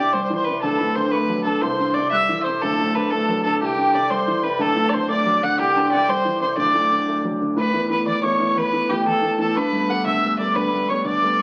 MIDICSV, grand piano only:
0, 0, Header, 1, 2, 480
1, 0, Start_track
1, 0, Tempo, 330943
1, 912, Time_signature, 6, 3, 24, 8
1, 16565, End_track
2, 0, Start_track
2, 0, Title_t, "Grand piano"
2, 0, Program_c, 0, 0
2, 0, Note_on_c, 0, 36, 70
2, 0, Note_on_c, 0, 48, 55
2, 191, Note_off_c, 0, 48, 0
2, 200, Note_on_c, 0, 55, 65
2, 429, Note_off_c, 0, 55, 0
2, 433, Note_on_c, 0, 52, 55
2, 665, Note_off_c, 0, 52, 0
2, 694, Note_on_c, 0, 48, 54
2, 876, Note_off_c, 0, 36, 0
2, 915, Note_on_c, 0, 26, 62
2, 916, Note_off_c, 0, 48, 0
2, 916, Note_on_c, 0, 38, 69
2, 1160, Note_on_c, 0, 45, 53
2, 1384, Note_on_c, 0, 50, 55
2, 1389, Note_off_c, 0, 45, 0
2, 1621, Note_off_c, 0, 50, 0
2, 1628, Note_on_c, 0, 57, 64
2, 1863, Note_off_c, 0, 57, 0
2, 1871, Note_on_c, 0, 54, 56
2, 2104, Note_off_c, 0, 54, 0
2, 2109, Note_on_c, 0, 50, 57
2, 2295, Note_off_c, 0, 26, 0
2, 2310, Note_off_c, 0, 38, 0
2, 2341, Note_on_c, 0, 36, 77
2, 2343, Note_off_c, 0, 50, 0
2, 2594, Note_on_c, 0, 43, 53
2, 2826, Note_off_c, 0, 43, 0
2, 2842, Note_on_c, 0, 48, 57
2, 3069, Note_off_c, 0, 48, 0
2, 3075, Note_on_c, 0, 55, 60
2, 3306, Note_off_c, 0, 55, 0
2, 3322, Note_on_c, 0, 52, 56
2, 3549, Note_off_c, 0, 52, 0
2, 3566, Note_on_c, 0, 48, 52
2, 3742, Note_off_c, 0, 36, 0
2, 3791, Note_off_c, 0, 48, 0
2, 3806, Note_on_c, 0, 26, 68
2, 3810, Note_on_c, 0, 38, 65
2, 4049, Note_on_c, 0, 45, 53
2, 4273, Note_off_c, 0, 45, 0
2, 4281, Note_on_c, 0, 50, 56
2, 4508, Note_off_c, 0, 50, 0
2, 4524, Note_on_c, 0, 57, 58
2, 4750, Note_off_c, 0, 57, 0
2, 4767, Note_on_c, 0, 54, 51
2, 4991, Note_off_c, 0, 54, 0
2, 5009, Note_on_c, 0, 50, 56
2, 5179, Note_off_c, 0, 26, 0
2, 5196, Note_off_c, 0, 38, 0
2, 5232, Note_off_c, 0, 50, 0
2, 5239, Note_on_c, 0, 36, 67
2, 5469, Note_on_c, 0, 43, 51
2, 5702, Note_off_c, 0, 43, 0
2, 5723, Note_on_c, 0, 48, 58
2, 5949, Note_off_c, 0, 48, 0
2, 5952, Note_on_c, 0, 55, 58
2, 6183, Note_off_c, 0, 55, 0
2, 6200, Note_on_c, 0, 52, 53
2, 6427, Note_off_c, 0, 52, 0
2, 6427, Note_on_c, 0, 48, 53
2, 6630, Note_off_c, 0, 36, 0
2, 6655, Note_on_c, 0, 38, 68
2, 6660, Note_off_c, 0, 48, 0
2, 6661, Note_on_c, 0, 26, 70
2, 6897, Note_on_c, 0, 45, 52
2, 7135, Note_off_c, 0, 45, 0
2, 7141, Note_on_c, 0, 50, 59
2, 7375, Note_on_c, 0, 57, 61
2, 7377, Note_off_c, 0, 50, 0
2, 7614, Note_off_c, 0, 57, 0
2, 7621, Note_on_c, 0, 54, 56
2, 7852, Note_on_c, 0, 50, 57
2, 7857, Note_off_c, 0, 54, 0
2, 8045, Note_off_c, 0, 26, 0
2, 8057, Note_off_c, 0, 38, 0
2, 8092, Note_off_c, 0, 50, 0
2, 8099, Note_on_c, 0, 36, 66
2, 8346, Note_on_c, 0, 43, 53
2, 8579, Note_off_c, 0, 43, 0
2, 8583, Note_on_c, 0, 48, 57
2, 8817, Note_off_c, 0, 48, 0
2, 8823, Note_on_c, 0, 55, 60
2, 9057, Note_off_c, 0, 55, 0
2, 9063, Note_on_c, 0, 52, 56
2, 9297, Note_off_c, 0, 52, 0
2, 9297, Note_on_c, 0, 48, 51
2, 9499, Note_off_c, 0, 36, 0
2, 9530, Note_on_c, 0, 38, 73
2, 9534, Note_off_c, 0, 48, 0
2, 9536, Note_on_c, 0, 26, 61
2, 9780, Note_on_c, 0, 45, 53
2, 10016, Note_off_c, 0, 45, 0
2, 10022, Note_on_c, 0, 50, 57
2, 10257, Note_off_c, 0, 50, 0
2, 10261, Note_on_c, 0, 57, 59
2, 10496, Note_off_c, 0, 57, 0
2, 10508, Note_on_c, 0, 54, 56
2, 10738, Note_on_c, 0, 50, 53
2, 10740, Note_off_c, 0, 54, 0
2, 10923, Note_off_c, 0, 26, 0
2, 10934, Note_off_c, 0, 38, 0
2, 10970, Note_on_c, 0, 45, 66
2, 10974, Note_off_c, 0, 50, 0
2, 11218, Note_on_c, 0, 52, 49
2, 11220, Note_on_c, 0, 57, 48
2, 11228, Note_on_c, 0, 59, 52
2, 11425, Note_off_c, 0, 52, 0
2, 11430, Note_off_c, 0, 57, 0
2, 11434, Note_off_c, 0, 59, 0
2, 11443, Note_off_c, 0, 45, 0
2, 11447, Note_on_c, 0, 52, 50
2, 11451, Note_on_c, 0, 57, 44
2, 11456, Note_on_c, 0, 59, 58
2, 11689, Note_on_c, 0, 40, 62
2, 11839, Note_off_c, 0, 52, 0
2, 11841, Note_off_c, 0, 57, 0
2, 11844, Note_off_c, 0, 59, 0
2, 11935, Note_on_c, 0, 52, 46
2, 11938, Note_on_c, 0, 57, 44
2, 11940, Note_on_c, 0, 59, 51
2, 12145, Note_off_c, 0, 52, 0
2, 12153, Note_off_c, 0, 57, 0
2, 12154, Note_off_c, 0, 59, 0
2, 12163, Note_off_c, 0, 40, 0
2, 12167, Note_on_c, 0, 52, 47
2, 12175, Note_on_c, 0, 57, 46
2, 12176, Note_on_c, 0, 59, 57
2, 12410, Note_on_c, 0, 40, 64
2, 12559, Note_off_c, 0, 52, 0
2, 12564, Note_off_c, 0, 57, 0
2, 12564, Note_off_c, 0, 59, 0
2, 12659, Note_on_c, 0, 52, 52
2, 12659, Note_on_c, 0, 57, 46
2, 12668, Note_on_c, 0, 59, 50
2, 12877, Note_off_c, 0, 52, 0
2, 12880, Note_off_c, 0, 57, 0
2, 12884, Note_off_c, 0, 40, 0
2, 12886, Note_off_c, 0, 59, 0
2, 12899, Note_on_c, 0, 52, 52
2, 12902, Note_on_c, 0, 57, 48
2, 12907, Note_on_c, 0, 59, 55
2, 13140, Note_on_c, 0, 40, 64
2, 13286, Note_off_c, 0, 52, 0
2, 13288, Note_off_c, 0, 57, 0
2, 13291, Note_off_c, 0, 59, 0
2, 13372, Note_on_c, 0, 52, 51
2, 13379, Note_on_c, 0, 57, 46
2, 13387, Note_on_c, 0, 59, 54
2, 13588, Note_off_c, 0, 52, 0
2, 13601, Note_off_c, 0, 57, 0
2, 13604, Note_off_c, 0, 59, 0
2, 13610, Note_off_c, 0, 40, 0
2, 13610, Note_on_c, 0, 52, 50
2, 13623, Note_on_c, 0, 57, 45
2, 13626, Note_on_c, 0, 59, 52
2, 13809, Note_off_c, 0, 52, 0
2, 13817, Note_off_c, 0, 57, 0
2, 13819, Note_off_c, 0, 59, 0
2, 13867, Note_on_c, 0, 43, 67
2, 14102, Note_on_c, 0, 55, 49
2, 14111, Note_on_c, 0, 57, 47
2, 14123, Note_on_c, 0, 59, 54
2, 14322, Note_off_c, 0, 55, 0
2, 14331, Note_off_c, 0, 57, 0
2, 14334, Note_off_c, 0, 43, 0
2, 14335, Note_off_c, 0, 59, 0
2, 14344, Note_on_c, 0, 55, 49
2, 14353, Note_on_c, 0, 57, 46
2, 14357, Note_on_c, 0, 59, 55
2, 14589, Note_on_c, 0, 38, 65
2, 14730, Note_off_c, 0, 55, 0
2, 14735, Note_off_c, 0, 57, 0
2, 14738, Note_off_c, 0, 59, 0
2, 14835, Note_on_c, 0, 57, 43
2, 14836, Note_on_c, 0, 55, 49
2, 14848, Note_on_c, 0, 59, 50
2, 15055, Note_off_c, 0, 38, 0
2, 15058, Note_off_c, 0, 55, 0
2, 15060, Note_off_c, 0, 59, 0
2, 15062, Note_off_c, 0, 57, 0
2, 15080, Note_on_c, 0, 55, 48
2, 15082, Note_on_c, 0, 59, 57
2, 15083, Note_on_c, 0, 57, 45
2, 15305, Note_on_c, 0, 38, 64
2, 15460, Note_off_c, 0, 55, 0
2, 15462, Note_off_c, 0, 57, 0
2, 15462, Note_off_c, 0, 59, 0
2, 15554, Note_on_c, 0, 55, 48
2, 15560, Note_on_c, 0, 57, 42
2, 15561, Note_on_c, 0, 59, 53
2, 15758, Note_off_c, 0, 55, 0
2, 15765, Note_off_c, 0, 57, 0
2, 15770, Note_off_c, 0, 59, 0
2, 15774, Note_off_c, 0, 38, 0
2, 15780, Note_on_c, 0, 55, 51
2, 15787, Note_on_c, 0, 57, 47
2, 15792, Note_on_c, 0, 59, 55
2, 16021, Note_on_c, 0, 38, 67
2, 16169, Note_off_c, 0, 55, 0
2, 16173, Note_off_c, 0, 57, 0
2, 16176, Note_off_c, 0, 59, 0
2, 16268, Note_on_c, 0, 55, 50
2, 16274, Note_on_c, 0, 57, 47
2, 16280, Note_on_c, 0, 59, 51
2, 16493, Note_off_c, 0, 38, 0
2, 16497, Note_off_c, 0, 55, 0
2, 16505, Note_off_c, 0, 57, 0
2, 16506, Note_off_c, 0, 59, 0
2, 16519, Note_on_c, 0, 55, 46
2, 16565, Note_off_c, 0, 55, 0
2, 16565, End_track
0, 0, End_of_file